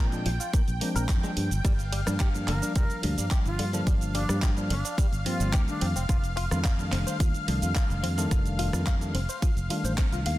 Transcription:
Already playing: fingered electric bass A#2, analog synth pad G5
0.12 tine electric piano F3 G#3 C4 D4, closed hi-hat, shaker
0.26 fingered electric bass A#1, clean electric guitar F3, open hi-hat
0.40 clean electric guitar F4, closed hi-hat, shaker
0.54 clean electric guitar A#3, kick, closed hi-hat, shaker
0.68 fingered electric bass A#1, closed hi-hat, shaker
0.81 tine electric piano F3 G#3 C4 D4, clean electric guitar A#3, open hi-hat
0.96 fingered electric bass A#1, clean electric guitar A#4, closed hi-hat, shaker
1.09 fingered electric bass F2, kick, clap, closed hi-hat, shaker
1.23 tine electric piano F3 G3 A#3 D4, clean electric guitar G#3, closed hi-hat, shaker
1.37 fingered electric bass G2, open hi-hat
1.51 fingered electric bass G1, closed hi-hat, shaker
1.64 fingered electric bass G1, clean electric guitar G3, analog synth pad F5, kick, cross-stick, closed hi-hat, ride, shaker
1.79 closed hi-hat, shaker
1.92 clean electric guitar G3, open hi-hat, ride
2.06 fingered electric bass G2, tine electric piano F3 G3 A#3 D4, clean electric guitar G3, cross-stick, closed hi-hat, shaker
2.20 clean electric guitar G4, kick, clap, closed hi-hat, ride, shaker
2.33 tine electric piano F3 G3 A#3 D4, closed hi-hat, shaker
2.47 fingered electric bass G1, clean electric guitar D3, flute A#4, clap, open hi-hat, ride
2.62 clean electric guitar D4, closed hi-hat, shaker
2.76 fingered electric bass F1, clean electric guitar G3, flute A#4, kick, closed hi-hat, ride, shaker
2.90 closed hi-hat, shaker
3.02 fingered electric bass D2, clean electric guitar G2, tine electric piano F3 G3 A#3 D4, open hi-hat, ride
3.18 fingered electric bass G2, clean electric guitar G3, closed hi-hat, shaker
3.31 clean electric guitar G4, kick, clap, closed hi-hat, ride, shaker
3.45 fingered electric bass G1, flute F4, closed hi-hat, shaker
3.59 fingered electric bass G2, clean electric guitar D3, open hi-hat, ride
3.73 clean electric guitar D3, tine electric piano F3 G3 A#3 D4, closed hi-hat, shaker
3.87 fingered electric bass G1, clean electric guitar G3, kick, closed hi-hat, ride, shaker
4.01 closed hi-hat, shaker
4.14 clean electric guitar G3, flute D4, open hi-hat, ride
4.29 fingered electric bass G2, tine electric piano F3 G3 A#3 D4, clean electric guitar G3, cross-stick, closed hi-hat, shaker
4.42 clean electric guitar G4, kick, clap, closed hi-hat, ride, shaker
4.57 tine electric piano F3 G3 A#3 D4, closed hi-hat, shaker
4.70 fingered electric bass G1, clean electric guitar D3, flute D4, open hi-hat, ride
4.85 clean electric guitar D4, closed hi-hat, shaker
4.98 clean electric guitar G3, kick, closed hi-hat, ride, shaker
5.12 fingered electric bass G1, closed hi-hat, shaker
5.25 clean electric guitar G2, tine electric piano F3 G3 A#3 C4, flute F4, open hi-hat, ride
5.40 fingered electric bass G1, clean electric guitar G3, closed hi-hat, shaker
5.53 fingered electric bass D2, clean electric guitar G4, kick, clap, closed hi-hat, ride, shaker
5.67 tine electric piano D#3 G3 A3 D4, flute D4, closed hi-hat, shaker
5.81 fingered electric bass F2, clean electric guitar C4, open hi-hat, ride
5.96 fingered electric bass F1, clean electric guitar C4, closed hi-hat, shaker
6.09 clean electric guitar F4, kick, cross-stick, closed hi-hat, ride, shaker
6.24 closed hi-hat, shaker
6.37 clean electric guitar F4, open hi-hat, ride
6.51 fingered electric bass F2, tine electric piano D#3 G3 A3 D4, clean electric guitar F4, cross-stick, closed hi-hat, shaker
6.64 clean electric guitar F5, kick, clap, closed hi-hat, ride, shaker
6.78 tine electric piano D#3 G3 A3 D4, closed hi-hat, shaker
6.92 fingered electric bass F1, clean electric guitar C4, clap, open hi-hat, ride
7.07 clean electric guitar C5, closed hi-hat, shaker
7.20 fingered electric bass D#2, clean electric guitar F4, kick, closed hi-hat, ride, shaker
7.34 closed hi-hat, shaker
7.47 fingered electric bass C2, tine electric piano D#3 G3 A3 D4, clean electric guitar F3, open hi-hat, ride
7.62 fingered electric bass F2, clean electric guitar F4, closed hi-hat, shaker
7.75 clean electric guitar F5, kick, clap, closed hi-hat, ride, shaker
7.90 fingered electric bass F1, closed hi-hat, shaker
8.03 fingered electric bass F2, clean electric guitar C4, open hi-hat, ride
8.17 tine electric piano D#3 G3 A3 D4, clean electric guitar C4, closed hi-hat, shaker
8.31 fingered electric bass F1, clean electric guitar F4, kick, cross-stick, closed hi-hat, ride, shaker
8.46 closed hi-hat, shaker
8.59 clean electric guitar F4, open hi-hat, ride
8.73 fingered electric bass F2, tine electric piano D#3 G3 A3 D4, clean electric guitar F4, cross-stick, closed hi-hat, shaker
8.86 clean electric guitar F5, kick, clap, closed hi-hat, ride, shaker
9.00 tine electric piano D#3 G3 A3 D4, closed hi-hat, shaker
9.14 fingered electric bass F1, clean electric guitar C4, open hi-hat, ride
9.29 clean electric guitar C5, closed hi-hat, shaker
9.42 clean electric guitar F4, kick, closed hi-hat, ride, shaker
9.56 fingered electric bass F1, closed hi-hat, shaker
9.69 tine electric piano D#3 G3 A3 D4, clean electric guitar F4, open hi-hat, ride
9.84 fingered electric bass A1, clean electric guitar C5, closed hi-hat, shaker
9.98 clean electric guitar C4, kick, clap, closed hi-hat, ride, shaker
10.12 fingered electric bass C2, clean electric guitar F4, closed hi-hat, shaker
10.26 fingered electric bass D#2, clean electric guitar F5, open hi-hat, ride

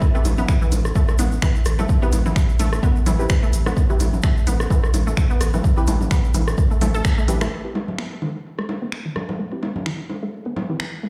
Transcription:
0.02 kick, shaker
0.15 synth arpeggio sound A3, synth stab C4 E4 G4 B4, shaker
0.25 analog synth bass A1, closed hi-hat, low bongo, shaker
0.38 synth arpeggio sound B3, low conga, shaker
0.48 finger snap, kick, shaker
0.62 synth arpeggio sound E3, shaker
0.72 analog synth bass A1, closed hi-hat, low bongo, shaker
0.85 cross-stick, shaker
0.95 synth arpeggio sound A3, kick, shaker
1.08 cross-stick, shaker
1.19 analog synth bass A1, synth arpeggio sound B3, closed hi-hat, low bongo, shaker
1.32 shaker
1.42 synth arpeggio sound E3, finger snap, kick, shaker
1.55 shaker
1.65 analog synth bass A1, cross-stick, closed hi-hat, shaker
1.79 synth arpeggio sound A3, low bongo, low conga, shaker
1.89 kick, shaker
2.02 synth arpeggio sound B3, synth stab C4 E4 G4 B4, shaker
2.12 analog synth bass A1, closed hi-hat, low bongo, shaker
2.25 synth arpeggio sound E3, low conga, shaker
2.36 finger snap, kick, shaker
2.49 shaker
2.59 analog synth bass A1, synth arpeggio sound A3, closed hi-hat, low bongo, shaker
2.73 cross-stick, shaker
2.83 synth arpeggio sound B3, kick, shaker
2.96 shaker
3.06 analog synth bass A1, synth arpeggio sound E3, closed hi-hat, low bongo, low conga, shaker
3.19 synth stab C4 E4 G4 B4, shaker
3.29 finger snap, kick, shaker
3.43 synth arpeggio sound A3, shaker
3.53 analog synth bass A1, closed hi-hat, shaker
3.66 synth arpeggio sound B3, cross-stick, low bongo, shaker
3.77 kick, shaker
3.90 synth arpeggio sound E3, synth stab C4 E4 G4 B4, shaker
4.00 analog synth bass A1, closed hi-hat, low bongo, shaker
4.13 low conga, shaker
4.22 synth arpeggio sound A3, finger snap, kick, shaker
4.37 shaker
4.47 analog synth bass A1, synth arpeggio sound B3, closed hi-hat, low bongo, shaker
4.60 cross-stick, shaker
4.70 synth arpeggio sound E3, kick, shaker
4.84 cross-stick, shaker
4.94 analog synth bass A1, closed hi-hat, low bongo, shaker
5.07 synth arpeggio sound A3, shaker
5.17 finger snap, kick, shaker
5.30 synth arpeggio sound B3, shaker
5.41 analog synth bass A1, cross-stick, closed hi-hat, shaker
5.53 synth arpeggio sound E3, low bongo, low conga, shaker
5.64 kick, shaker
5.77 synth stab C4 E4 G4 B4, shaker
5.87 analog synth bass A1, synth arpeggio sound A3, closed hi-hat, low bongo, shaker
6.01 low conga, shaker
6.11 synth arpeggio sound B3, finger snap, kick, shaker
6.24 shaker
6.34 analog synth bass A1, synth arpeggio sound E3, closed hi-hat, low bongo, shaker
6.48 cross-stick, shaker
6.58 kick, shaker
6.71 synth arpeggio sound A3, shaker
6.81 analog synth bass A1, synth arpeggio sound A3, closed hi-hat, low bongo, low conga, shaker
6.94 synth arpeggio sound A4, shaker
7.05 finger snap, kick, shaker
7.18 synth arpeggio sound A3, shaker
7.28 analog synth bass A1, synth arpeggio sound A3, synth stab C4 E4 G4 B4, closed hi-hat, low conga, shaker
7.41 synth arpeggio sound A3, finger snap, cross-stick, low bongo, shaker
7.65 synth stab C4 E4 G4 B4
7.75 synth arpeggio sound A3, low bongo
7.88 low conga
7.98 synth arpeggio sound B3, finger snap
8.22 synth arpeggio sound E3, low bongo
8.59 synth arpeggio sound A3, cross-stick
8.69 low bongo
8.82 synth arpeggio sound B3
8.92 finger snap
9.05 synth arpeggio sound E3
9.16 cross-stick, low conga
9.29 low bongo, low conga
9.39 synth arpeggio sound A3
9.52 synth stab C4 E4 G4 B4
9.63 synth arpeggio sound B3, low bongo
9.76 low conga
9.86 synth arpeggio sound E3, finger snap
10.10 low bongo
10.23 synth arpeggio sound A3
10.46 synth arpeggio sound B3
10.56 low bongo, low conga
10.69 synth arpeggio sound E3, synth stab C4 E4 G4 B4
10.80 finger snap
11.03 synth arpeggio sound A3

